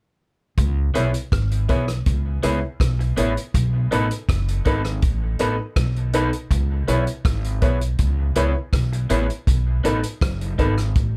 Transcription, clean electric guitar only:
0.94 1.10 B3 medium
0.94 1.10 E4 medium
0.94 1.10 G#4 medium
1.69 1.84 B3 medium
1.69 1.85 E4 medium
1.69 1.85 G#4 medium
2.43 2.58 B3 medium
2.43 2.59 E4 medium
2.43 2.59 G#4 medium
2.99 muted clean electric guitar stroke soft
3.17 3.32 B3 medium
3.17 3.33 E4 loud
3.17 3.33 G#4 loud
3.91 4.07 B3 medium
3.91 4.07 D#4 medium
3.91 4.07 A4 loud
4.65 4.81 B3 medium
4.65 4.81 D#4 medium
4.65 4.81 A4 medium
5.40 5.55 B3 medium
5.40 5.55 D#4 medium
5.40 5.56 A4 medium
6.14 6.29 B3 medium
6.14 6.29 D#4 loud
6.14 6.30 A4 loud
6.88 7.03 B3 medium
6.88 7.04 E4 medium
6.88 7.04 G#4 medium
7.62 7.77 B3 medium
7.62 7.78 E4 medium
7.62 7.78 G#4 medium
8.36 8.51 B3 medium
8.36 8.52 E4 loud
8.36 8.52 G#4 medium
8.93 muted clean electric guitar stroke soft
9.10 9.25 B3 medium
9.10 9.26 E4 medium
9.10 9.26 G#4 loud
9.84 9.99 B3 medium
9.84 10.00 D#4 medium
9.84 10.00 A4 medium
10.58 10.74 B3 medium
10.58 10.74 D#4 medium
10.58 10.74 A4 medium

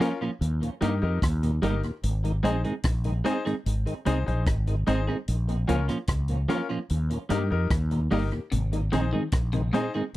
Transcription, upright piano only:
0.00 0.16 C#4 medium
0.00 0.16 F4 medium
0.00 0.17 A#4 loud
0.81 0.97 D#4 medium
0.81 0.97 G4 medium
0.81 0.98 A#4 medium
1.02 1.17 D#4 medium
1.02 1.18 G4 medium
1.02 1.18 A#4 medium
1.62 1.78 D#4 medium
1.62 1.79 G4 medium
1.62 1.79 A#4 loud
1.83 1.91 G4 soft
1.83 1.91 A#4 soft
2.43 2.59 D#4 medium
2.43 2.60 G#4 medium
2.43 2.60 C5 medium
3.25 3.41 D#4 loud
3.25 3.41 G#4 medium
3.25 3.41 C5 loud
4.05 4.22 D#4 medium
4.05 4.22 G#4 medium
4.05 4.22 C5 medium
4.26 4.42 D#4 medium
4.26 4.42 G#4 medium
4.26 4.42 C5 medium
4.87 5.03 D#4 medium
4.87 5.03 G#4 medium
4.87 5.03 C5 loud
5.08 5.16 G#4 soft
5.08 5.16 C5 soft
5.67 5.84 C#4 medium
5.67 5.84 F4 medium
5.67 5.84 A#4 medium
6.49 6.65 C#4 medium
6.49 6.65 F4 medium
6.49 6.65 A#4 medium
7.30 7.46 D#4 medium
7.30 7.46 G4 medium
7.30 7.46 A#4 medium
7.50 7.66 D#4 medium
7.50 7.66 G4 medium
7.50 7.67 A#4 medium
8.11 8.27 D#4 medium
8.11 8.28 G4 medium
8.11 8.28 A#4 loud
8.32 8.40 G4 soft
8.32 8.40 A#4 soft
8.92 9.08 D#4 medium
8.92 9.09 G#4 medium
8.92 9.09 C5 medium
9.73 9.89 D#4 loud
9.73 9.90 G#4 medium
9.73 9.90 C5 loud

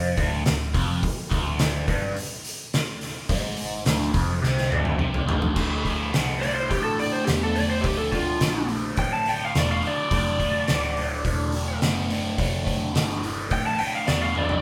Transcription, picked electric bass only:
0.00 0.14 F1 medium
0.18 0.44 D1 medium
0.47 0.73 D1 medium
0.75 1.01 F1 medium
1.31 1.84 D1 medium
1.89 2.15 G1 medium
3.30 3.83 G#1 medium
3.87 4.14 D1 medium
4.15 4.42 F1 medium
4.43 4.70 C2 medium
4.72 4.99 D1 medium
5.01 5.27 C2 medium
5.29 5.56 D1 medium
5.57 6.13 D2 medium
6.15 6.70 C2 medium
6.71 7.26 A1 medium
7.28 7.83 E2 medium
7.85 8.40 D2 medium
8.41 8.96 A#1 medium
8.98 9.53 A1 medium
9.55 9.81 E1 medium
9.84 muted picked electric bass stroke soft
10.11 10.67 F1 medium
10.69 11.24 D1 medium
11.25 11.80 E1 medium
11.82 12.37 F#1 medium
12.39 12.94 F1 medium
12.94 13.50 G1 medium
13.51 13.78 A1 medium
13.81 muted picked electric bass stroke soft
14.09 14.62 E2 medium

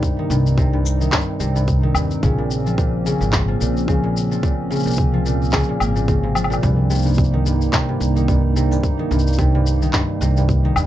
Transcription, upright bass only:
0.30 1.06 C2 loud
1.40 1.88 C2 medium
1.95 2.14 D#2 loud
2.23 3.12 A#1 loud
3.21 3.54 G#1 medium
3.60 4.77 A#1 medium
4.85 5.60 C2 medium
5.80 6.56 G#1 medium
6.63 7.67 C2 loud
8.00 8.77 C2 loud
9.11 9.87 C2 loud
10.21 10.69 C2 medium
10.76 10.87 D#2 loud

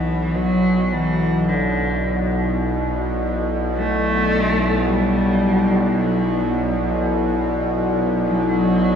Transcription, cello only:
0.00 0.36 E3 medium
0.35 0.94 F#3 medium
0.93 1.49 E3 medium
1.48 2.32 D3 medium
3.75 4.88 A3 medium
4.86 6.01 G3 medium
5.99 6.85 F#3 medium
8.27 8.96 F#3 medium

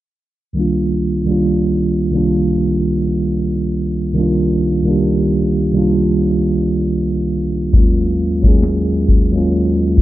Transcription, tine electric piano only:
0.53 1.01 C2 medium
0.53 1.02 D#3 medium
0.53 1.03 G3 medium
0.57 1.04 A#3 medium
0.57 1.04 D4 medium
0.57 1.05 F4 medium
1.24 1.85 C2 medium
1.24 1.86 D#3 medium
1.24 1.87 G3 medium
1.24 1.87 A#3 medium
1.30 1.88 D4 medium
1.30 1.89 F4 medium
2.11 3.36 C2 medium
2.11 3.36 D#3 medium
2.11 3.37 G3 medium
2.15 3.38 A#3 medium
2.15 3.38 D4 medium
2.15 3.39 F4 medium
4.13 4.61 C2 medium
4.13 4.61 D#3 medium
4.13 4.62 G3 medium
4.17 4.63 A#3 medium
4.17 4.63 D4 medium
4.17 4.64 F4 medium
4.83 5.44 C2 medium
4.83 5.44 D#3 medium
4.83 5.45 G3 medium
4.87 5.46 A#3 medium
4.87 5.46 D4 medium
4.87 5.47 G4 medium
5.72 6.95 C2 medium
5.72 6.96 D#3 medium
5.72 6.96 G3 medium
5.76 6.97 A#3 medium
5.76 6.98 D4 medium
5.76 6.98 F4 medium
7.72 8.19 D#2 medium
7.72 8.20 F#3 medium
7.72 8.21 G#3 medium
7.76 8.21 A#3 medium
7.76 8.22 C#4 medium
7.76 8.23 F4 medium
8.41 9.02 D#2 medium
8.41 9.03 F#3 medium
8.41 9.03 G#3 medium
8.45 9.04 A#3 medium
8.45 9.05 C#4 medium
8.45 9.05 G#4 medium
9.31 10.02 D#2 medium
9.31 10.02 F#3 medium
9.31 10.02 G#3 medium
9.35 10.02 A#3 medium
9.35 10.02 C#4 medium
9.35 10.02 F4 medium

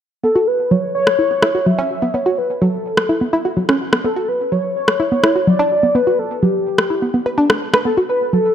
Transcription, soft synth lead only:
0.23 0.49 A4 medium
0.47 0.73 B4 medium
0.71 0.94 C#5 medium
0.95 1.68 C#5 loud
1.66 2.15 E5 loud
2.14 2.39 C#5 loud
2.38 2.63 B4 medium
2.62 3.57 A4 medium
4.04 4.30 A4 medium
4.28 4.54 B4 medium
4.52 4.75 C#5 medium
4.76 5.49 C#5 loud
5.47 5.97 D5 loud
5.95 6.20 B4 loud
6.19 6.44 A4 medium
6.43 7.38 G4 medium
7.85 7.96 A4 medium
8.09 8.31 B4 medium
8.33 8.55 A4 medium

